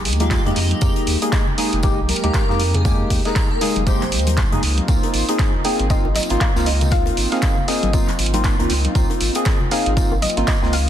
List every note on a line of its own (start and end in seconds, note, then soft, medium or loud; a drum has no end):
0.00 4.59 G#3 medium
0.00 10.89 A#3 medium
0.00 10.89 D#4 medium
0.00 4.59 G4 medium
0.05 0.37 D#2 medium
0.05 open hi-hat loud
0.05 tambourine medium
0.13 closed hi-hat medium
0.20 0.41 G#3 loud
0.20 0.41 A#3 medium
0.20 0.41 D#4 medium
0.20 0.43 F4 medium
0.20 0.41 G4 loud
0.20 closed hi-hat soft
0.20 closed hi-hat medium
0.20 high conga medium
0.31 kick loud
0.31 snare loud
0.31 clap loud
0.31 closed hi-hat medium
0.31 tambourine medium
0.45 0.52 F2 loud
0.45 0.59 G#3 loud
0.45 0.59 A#3 medium
0.45 1.16 D#4 loud
0.45 0.59 D#4 medium
0.45 0.59 G4 loud
0.45 closed hi-hat soft
0.45 low conga medium
0.56 0.74 F2 loud
0.56 open hi-hat loud
0.56 tambourine medium
0.71 closed hi-hat medium
0.71 high conga medium
0.81 0.91 F2 loud
0.81 1.18 G#3 medium
0.81 1.18 A#3 medium
0.81 1.18 D#4 medium
0.81 1.18 G4 medium
0.81 kick loud
0.81 closed hi-hat medium
0.81 tambourine medium
0.96 closed hi-hat soft
1.07 1.17 D#2 medium
1.07 open hi-hat loud
1.07 tambourine medium
1.22 1.45 G#3 medium
1.22 1.45 A#3 medium
1.22 1.45 D#4 medium
1.22 1.45 G#4 medium
1.22 closed hi-hat medium
1.22 closed hi-hat soft
1.32 kick loud
1.32 snare loud
1.32 clap loud
1.32 closed hi-hat medium
1.32 tambourine medium
1.47 low conga medium
1.58 1.80 G#3 medium
1.58 1.80 A#3 medium
1.58 1.80 D#4 medium
1.58 1.80 G#4 loud
1.58 open hi-hat loud
1.58 tambourine medium
1.73 2.00 F1 medium
1.73 closed hi-hat soft
1.83 2.00 G#3 medium
1.83 2.00 A#3 medium
1.83 2.00 D#4 medium
1.83 2.00 G4 loud
1.83 kick loud
1.83 closed hi-hat medium
1.83 tambourine medium
1.98 2.13 C2 loud
2.08 2.71 A#4 medium
2.08 open hi-hat loud
2.08 tambourine medium
2.08 high conga medium
2.16 closed hi-hat medium
2.24 2.30 D#2 loud
2.24 2.45 G#3 loud
2.24 2.45 A#3 medium
2.24 2.45 D#4 medium
2.24 2.45 G4 loud
2.24 closed hi-hat soft
2.34 kick loud
2.34 snare loud
2.34 clap loud
2.34 closed hi-hat medium
2.34 tambourine medium
2.49 3.04 F2 loud
2.49 2.62 G#3 loud
2.49 2.62 A#3 medium
2.49 2.62 D#4 medium
2.49 2.62 G4 loud
2.49 snare soft
2.59 open hi-hat loud
2.59 tambourine medium
2.74 2.81 G#4 medium
2.74 closed hi-hat soft
2.74 low conga medium
2.85 3.22 G#3 medium
2.85 3.22 A#3 medium
2.85 3.22 D#4 medium
2.85 3.22 G4 medium
2.85 2.95 G#4 medium
2.85 kick loud
2.85 closed hi-hat medium
2.85 tambourine medium
3.10 3.20 D#2 medium
3.10 kick medium
3.10 open hi-hat loud
3.10 tambourine medium
3.25 3.49 G#3 medium
3.25 3.49 A#3 medium
3.25 3.49 D#4 medium
3.25 3.49 G#4 medium
3.25 3.50 A#4 loud
3.25 snare medium
3.25 closed hi-hat medium
3.36 kick loud
3.36 snare loud
3.36 clap loud
3.36 closed hi-hat medium
3.36 tambourine loud
3.50 3.67 A#4 medium
3.50 low conga medium
3.61 3.83 G#3 medium
3.61 3.83 A#3 medium
3.61 3.84 D#4 medium
3.61 3.84 G#4 loud
3.61 snare soft
3.61 open hi-hat loud
3.61 tambourine medium
3.76 4.14 F1 medium
3.76 closed hi-hat soft
3.76 high conga medium
3.87 4.03 G#3 loud
3.87 4.03 A#3 medium
3.87 4.03 D#4 medium
3.87 4.03 G4 loud
3.87 4.38 C5 medium
3.87 kick loud
3.87 closed hi-hat medium
3.87 tambourine medium
4.01 clap soft
4.01 closed hi-hat soft
4.01 high conga medium
4.12 4.44 D#2 medium
4.12 open hi-hat loud
4.12 tambourine medium
4.19 closed hi-hat medium
4.27 closed hi-hat medium
4.27 closed hi-hat soft
4.27 high conga medium
4.37 kick loud
4.37 snare loud
4.37 clap loud
4.37 closed hi-hat medium
4.37 tambourine medium
4.52 4.59 F2 medium
4.52 4.62 G#3 medium
4.52 4.62 A#3 medium
4.52 4.62 D#4 medium
4.52 4.62 G#4 medium
4.52 closed hi-hat soft
4.52 low conga medium
4.63 4.81 C#2 loud
4.63 10.89 C4 medium
4.63 10.89 F4 medium
4.63 open hi-hat loud
4.63 tambourine medium
4.78 closed hi-hat soft
4.78 high conga medium
4.88 4.98 C#2 loud
4.88 5.25 A#3 medium
4.88 5.25 C4 medium
4.88 5.25 D#4 medium
4.88 5.25 F4 medium
4.88 kick loud
4.88 closed hi-hat medium
4.88 tambourine medium
5.03 closed hi-hat soft
5.03 high bongo medium
5.14 5.23 G#1 medium
5.14 open hi-hat loud
5.14 tambourine medium
5.29 5.52 A#3 medium
5.29 5.52 C4 medium
5.29 5.52 D#4 medium
5.29 5.52 G#4 medium
5.29 closed hi-hat medium
5.29 closed hi-hat soft
5.39 kick loud
5.39 snare loud
5.39 clap loud
5.39 closed hi-hat medium
5.39 tambourine loud
5.54 low conga medium
5.64 5.87 A#3 medium
5.64 5.87 C4 medium
5.64 5.87 D#4 medium
5.64 5.87 G#4 loud
5.64 5.91 G5 loud
5.64 open hi-hat loud
5.64 tambourine medium
5.79 5.94 G#1 medium
5.79 closed hi-hat soft
5.90 6.07 A#3 medium
5.90 6.07 C4 medium
5.90 6.07 D#4 medium
5.90 6.07 F4 loud
5.90 6.14 D#5 loud
5.90 kick loud
5.90 closed hi-hat medium
5.90 tambourine medium
6.05 6.19 G#1 loud
6.05 high bongo medium
6.15 6.39 D#5 loud
6.15 snare medium
6.15 open hi-hat loud
6.15 tambourine medium
6.15 high conga medium
6.23 closed hi-hat medium
6.30 6.37 G#1 loud
6.30 6.51 A#3 loud
6.30 6.51 C4 medium
6.30 6.51 D#4 medium
6.30 6.51 F4 loud
6.30 closed hi-hat soft
6.41 6.67 F5 loud
6.41 kick loud
6.41 clap loud
6.41 closed hi-hat medium
6.41 tambourine medium
6.56 7.11 C#2 loud
6.56 6.69 A#3 loud
6.56 6.69 C4 medium
6.56 6.69 D#4 medium
6.56 6.69 F4 loud
6.56 snare medium
6.56 tambourine medium
6.66 6.93 D#5 medium
6.66 closed hi-hat soft
6.66 open hi-hat loud
6.81 closed hi-hat soft
6.81 tambourine medium
6.81 low conga medium
6.91 7.28 A#3 medium
6.91 7.29 C4 medium
6.91 7.29 D#4 medium
6.91 7.29 F4 medium
6.91 7.31 F5 loud
6.91 kick loud
6.91 snare loud
6.91 closed hi-hat medium
7.06 closed hi-hat soft
7.06 high bongo medium
7.17 7.27 G#1 medium
7.17 open hi-hat loud
7.17 tambourine medium
7.32 7.55 A#3 medium
7.32 7.56 C4 medium
7.32 7.56 D#4 medium
7.32 7.56 G#4 medium
7.32 7.69 F5 loud
7.32 snare medium
7.32 closed hi-hat medium
7.42 kick loud
7.42 snare loud
7.42 clap loud
7.42 closed hi-hat medium
7.42 tambourine medium
7.57 low conga medium
7.68 7.90 A#3 medium
7.68 7.90 C4 medium
7.68 7.90 D#4 medium
7.68 7.90 G#4 loud
7.68 8.66 D#5 medium
7.68 snare soft
7.68 open hi-hat loud
7.68 tambourine medium
7.83 7.97 G#1 medium
7.83 closed hi-hat soft
7.83 high conga medium
7.93 8.10 A#3 loud
7.93 8.10 C4 medium
7.93 8.10 D#4 medium
7.93 8.10 F4 loud
7.93 kick loud
7.93 closed hi-hat medium
7.93 tambourine medium
8.08 clap soft
8.08 closed hi-hat soft
8.08 high conga medium
8.19 8.50 G#1 medium
8.19 open hi-hat loud
8.19 tambourine medium
8.26 closed hi-hat medium
8.33 8.55 A#3 loud
8.33 8.55 C4 medium
8.33 8.55 D#4 medium
8.33 8.55 F4 loud
8.33 closed hi-hat medium
8.33 closed hi-hat soft
8.33 high bongo soft
8.33 high conga medium
8.44 kick loud
8.44 snare loud
8.44 clap loud
8.44 closed hi-hat medium
8.44 tambourine medium
8.59 8.66 C#2 loud
8.59 8.72 A#3 medium
8.59 8.72 C4 medium
8.59 8.72 D#4 medium
8.59 8.72 F4 loud
8.59 closed hi-hat soft
8.59 low conga medium
8.70 8.88 C#2 loud
8.70 open hi-hat loud
8.70 tambourine medium
8.85 closed hi-hat medium
8.85 high conga medium
8.95 9.05 C#2 loud
8.95 9.32 A#3 medium
8.95 9.32 C4 medium
8.95 9.32 D#4 medium
8.95 9.32 F4 medium
8.95 kick loud
8.95 closed hi-hat medium
8.95 tambourine medium
9.10 closed hi-hat soft
9.10 high bongo medium
9.20 9.30 G#1 medium
9.20 open hi-hat loud
9.20 tambourine medium
9.35 9.59 A#3 medium
9.35 9.59 C4 medium
9.35 9.59 D#4 medium
9.35 9.59 G#4 medium
9.35 closed hi-hat soft
9.35 closed hi-hat medium
9.45 kick loud
9.45 snare loud
9.45 clap loud
9.45 closed hi-hat medium
9.45 tambourine medium
9.61 low conga medium
9.71 9.94 A#3 medium
9.71 9.94 C4 medium
9.71 9.94 D#4 medium
9.71 9.94 G#4 loud
9.71 10.24 F5 loud
9.71 open hi-hat loud
9.71 tambourine medium
9.86 10.01 G#1 medium
9.86 closed hi-hat medium
9.97 10.13 A#3 medium
9.97 10.13 C4 medium
9.97 10.13 D#4 medium
9.97 10.14 F4 loud
9.97 kick loud
9.97 closed hi-hat medium
9.97 tambourine medium
10.12 10.26 G#1 loud
10.12 high bongo medium
10.22 10.47 D#5 loud
10.22 open hi-hat loud
10.22 tambourine medium
10.22 high conga medium
10.30 closed hi-hat medium
10.37 10.44 G#1 loud
10.37 10.58 A#3 loud
10.37 10.58 C4 medium
10.37 10.58 D#4 medium
10.37 10.58 F4 loud
10.37 closed hi-hat medium
10.47 10.74 D#5 loud
10.47 kick loud
10.47 snare loud
10.47 clap loud
10.47 closed hi-hat medium
10.47 tambourine medium
10.62 10.89 C#2 loud
10.62 10.76 A#3 loud
10.62 10.76 C4 medium
10.62 10.76 D#4 medium
10.62 10.76 F4 loud
10.62 snare soft
10.73 10.89 F5 loud
10.73 open hi-hat loud
10.73 tambourine medium